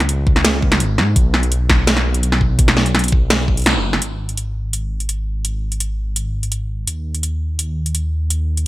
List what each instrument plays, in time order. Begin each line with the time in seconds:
Already playing: detuned saw bass C#2
0.00 snare, closed hi-hat
0.09 closed hi-hat
0.27 kick
0.36 snare
0.45 snare, closed hi-hat
0.62 kick
0.72 snare, closed hi-hat
0.80 detuned saw bass G#1, closed hi-hat
0.98 detuned saw bass G#2, snare
1.16 detuned saw bass B1, kick, closed hi-hat
1.34 snare
1.43 closed hi-hat
1.52 closed hi-hat
1.70 kick, snare
1.87 snare, closed hi-hat
1.97 snare
2.14 closed hi-hat
2.23 closed hi-hat
2.32 snare
2.41 kick
2.59 detuned saw bass B1, kick, closed hi-hat
2.68 snare
2.77 snare
2.86 closed hi-hat
2.95 snare, closed hi-hat
2.99 closed hi-hat
3.04 closed hi-hat
3.08 closed hi-hat
3.12 kick
3.30 snare, closed hi-hat
3.48 kick
3.57 closed hi-hat
3.60 closed hi-hat
3.62 closed hi-hat
3.64 snare, closed hi-hat
3.66 closed hi-hat
3.68 closed hi-hat
3.75 detuned saw bass F#1
3.93 snare
4.02 detuned saw bass G#1, closed hi-hat
4.29 closed hi-hat
4.38 closed hi-hat
4.73 closed hi-hat
5.00 closed hi-hat
5.09 closed hi-hat
5.45 closed hi-hat
5.72 closed hi-hat
5.80 closed hi-hat
6.16 closed hi-hat
6.43 closed hi-hat
6.52 closed hi-hat
6.87 detuned saw bass D#2, closed hi-hat
7.15 closed hi-hat
7.23 closed hi-hat
7.59 closed hi-hat
7.86 closed hi-hat
7.95 closed hi-hat
8.30 closed hi-hat
8.57 closed hi-hat